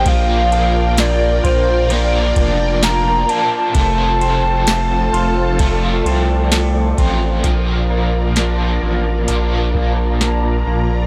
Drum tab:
RD |xxxxxxxx|xxxxxxxx|--------|
HH |--------|--------|x-x-x-x-|
TB |--x---x-|--x---x-|--------|
SD |--o---o-|--o---o-|--o---o-|
BD |o--o-o--|o---o--o|o----o--|